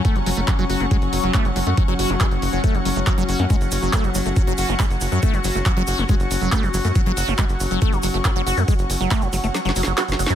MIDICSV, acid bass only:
0, 0, Header, 1, 2, 480
1, 0, Start_track
1, 0, Tempo, 431655
1, 53, Time_signature, 4, 2, 24, 8
1, 11509, End_track
2, 0, Start_track
2, 0, Title_t, "Acid bass"
2, 0, Program_c, 0, 38
2, 53, Note_on_c, 0, 57, 103
2, 173, Note_on_c, 0, 54, 79
2, 190, Note_off_c, 0, 57, 0
2, 240, Note_off_c, 0, 54, 0
2, 293, Note_on_c, 0, 54, 81
2, 333, Note_off_c, 0, 54, 0
2, 413, Note_on_c, 0, 57, 77
2, 453, Note_off_c, 0, 57, 0
2, 533, Note_on_c, 0, 54, 87
2, 600, Note_off_c, 0, 54, 0
2, 653, Note_on_c, 0, 54, 103
2, 720, Note_off_c, 0, 54, 0
2, 773, Note_on_c, 0, 66, 81
2, 893, Note_on_c, 0, 56, 77
2, 910, Note_off_c, 0, 66, 0
2, 960, Note_off_c, 0, 56, 0
2, 1013, Note_on_c, 0, 56, 106
2, 1080, Note_off_c, 0, 56, 0
2, 1373, Note_on_c, 0, 54, 76
2, 1473, Note_off_c, 0, 54, 0
2, 1493, Note_on_c, 0, 57, 100
2, 1614, Note_on_c, 0, 54, 76
2, 1630, Note_off_c, 0, 57, 0
2, 1680, Note_off_c, 0, 54, 0
2, 1733, Note_on_c, 0, 54, 79
2, 1773, Note_off_c, 0, 54, 0
2, 1853, Note_on_c, 0, 57, 77
2, 1893, Note_off_c, 0, 57, 0
2, 1973, Note_on_c, 0, 54, 86
2, 2040, Note_off_c, 0, 54, 0
2, 2093, Note_on_c, 0, 54, 102
2, 2160, Note_off_c, 0, 54, 0
2, 2213, Note_on_c, 0, 66, 81
2, 2333, Note_on_c, 0, 56, 83
2, 2350, Note_off_c, 0, 66, 0
2, 2400, Note_off_c, 0, 56, 0
2, 2453, Note_on_c, 0, 56, 110
2, 2520, Note_off_c, 0, 56, 0
2, 2813, Note_on_c, 0, 54, 80
2, 2913, Note_off_c, 0, 54, 0
2, 2933, Note_on_c, 0, 57, 107
2, 3053, Note_on_c, 0, 54, 77
2, 3070, Note_off_c, 0, 57, 0
2, 3120, Note_off_c, 0, 54, 0
2, 3174, Note_on_c, 0, 54, 75
2, 3213, Note_off_c, 0, 54, 0
2, 3293, Note_on_c, 0, 57, 76
2, 3333, Note_off_c, 0, 57, 0
2, 3413, Note_on_c, 0, 54, 83
2, 3480, Note_off_c, 0, 54, 0
2, 3533, Note_on_c, 0, 54, 99
2, 3600, Note_off_c, 0, 54, 0
2, 3653, Note_on_c, 0, 66, 78
2, 3773, Note_on_c, 0, 56, 81
2, 3790, Note_off_c, 0, 66, 0
2, 3840, Note_off_c, 0, 56, 0
2, 3893, Note_on_c, 0, 56, 101
2, 3960, Note_off_c, 0, 56, 0
2, 4253, Note_on_c, 0, 54, 79
2, 4353, Note_off_c, 0, 54, 0
2, 4373, Note_on_c, 0, 57, 108
2, 4493, Note_on_c, 0, 54, 77
2, 4510, Note_off_c, 0, 57, 0
2, 4560, Note_off_c, 0, 54, 0
2, 4613, Note_on_c, 0, 54, 78
2, 4653, Note_off_c, 0, 54, 0
2, 4733, Note_on_c, 0, 57, 78
2, 4773, Note_off_c, 0, 57, 0
2, 4853, Note_on_c, 0, 54, 85
2, 4920, Note_off_c, 0, 54, 0
2, 4973, Note_on_c, 0, 54, 100
2, 5040, Note_off_c, 0, 54, 0
2, 5093, Note_on_c, 0, 66, 78
2, 5213, Note_on_c, 0, 56, 76
2, 5229, Note_off_c, 0, 66, 0
2, 5280, Note_off_c, 0, 56, 0
2, 5333, Note_on_c, 0, 56, 96
2, 5400, Note_off_c, 0, 56, 0
2, 5693, Note_on_c, 0, 54, 81
2, 5793, Note_off_c, 0, 54, 0
2, 5813, Note_on_c, 0, 57, 103
2, 5933, Note_on_c, 0, 54, 81
2, 5950, Note_off_c, 0, 57, 0
2, 6000, Note_off_c, 0, 54, 0
2, 6053, Note_on_c, 0, 54, 79
2, 6093, Note_off_c, 0, 54, 0
2, 6173, Note_on_c, 0, 57, 82
2, 6213, Note_off_c, 0, 57, 0
2, 6293, Note_on_c, 0, 54, 89
2, 6360, Note_off_c, 0, 54, 0
2, 6413, Note_on_c, 0, 54, 100
2, 6480, Note_off_c, 0, 54, 0
2, 6533, Note_on_c, 0, 66, 81
2, 6653, Note_on_c, 0, 56, 78
2, 6670, Note_off_c, 0, 66, 0
2, 6720, Note_off_c, 0, 56, 0
2, 6773, Note_on_c, 0, 56, 100
2, 6840, Note_off_c, 0, 56, 0
2, 7133, Note_on_c, 0, 54, 74
2, 7233, Note_off_c, 0, 54, 0
2, 7253, Note_on_c, 0, 57, 103
2, 7373, Note_on_c, 0, 54, 77
2, 7390, Note_off_c, 0, 57, 0
2, 7440, Note_off_c, 0, 54, 0
2, 7493, Note_on_c, 0, 54, 75
2, 7533, Note_off_c, 0, 54, 0
2, 7613, Note_on_c, 0, 57, 82
2, 7653, Note_off_c, 0, 57, 0
2, 7734, Note_on_c, 0, 54, 85
2, 7800, Note_off_c, 0, 54, 0
2, 7853, Note_on_c, 0, 54, 103
2, 7920, Note_off_c, 0, 54, 0
2, 7974, Note_on_c, 0, 66, 78
2, 8094, Note_on_c, 0, 56, 81
2, 8110, Note_off_c, 0, 66, 0
2, 8160, Note_off_c, 0, 56, 0
2, 8214, Note_on_c, 0, 56, 109
2, 8280, Note_off_c, 0, 56, 0
2, 8574, Note_on_c, 0, 54, 76
2, 8673, Note_off_c, 0, 54, 0
2, 8694, Note_on_c, 0, 57, 104
2, 8814, Note_on_c, 0, 54, 80
2, 8831, Note_off_c, 0, 57, 0
2, 8880, Note_off_c, 0, 54, 0
2, 8934, Note_on_c, 0, 54, 74
2, 8973, Note_off_c, 0, 54, 0
2, 9054, Note_on_c, 0, 57, 73
2, 9093, Note_off_c, 0, 57, 0
2, 9174, Note_on_c, 0, 54, 80
2, 9240, Note_off_c, 0, 54, 0
2, 9294, Note_on_c, 0, 54, 100
2, 9360, Note_off_c, 0, 54, 0
2, 9414, Note_on_c, 0, 66, 78
2, 9533, Note_on_c, 0, 56, 78
2, 9550, Note_off_c, 0, 66, 0
2, 9600, Note_off_c, 0, 56, 0
2, 9653, Note_on_c, 0, 56, 101
2, 9720, Note_off_c, 0, 56, 0
2, 10013, Note_on_c, 0, 54, 82
2, 10113, Note_off_c, 0, 54, 0
2, 10133, Note_on_c, 0, 57, 108
2, 10253, Note_on_c, 0, 54, 73
2, 10270, Note_off_c, 0, 57, 0
2, 10320, Note_off_c, 0, 54, 0
2, 10373, Note_on_c, 0, 54, 78
2, 10413, Note_off_c, 0, 54, 0
2, 10493, Note_on_c, 0, 57, 80
2, 10533, Note_off_c, 0, 57, 0
2, 10613, Note_on_c, 0, 54, 85
2, 10680, Note_off_c, 0, 54, 0
2, 10733, Note_on_c, 0, 54, 101
2, 10800, Note_off_c, 0, 54, 0
2, 10853, Note_on_c, 0, 54, 81
2, 10920, Note_off_c, 0, 54, 0
2, 10973, Note_on_c, 0, 54, 74
2, 11040, Note_off_c, 0, 54, 0
2, 11093, Note_on_c, 0, 66, 97
2, 11160, Note_off_c, 0, 66, 0
2, 11333, Note_on_c, 0, 54, 82
2, 11373, Note_off_c, 0, 54, 0
2, 11453, Note_on_c, 0, 54, 109
2, 11509, Note_off_c, 0, 54, 0
2, 11509, End_track
0, 0, End_of_file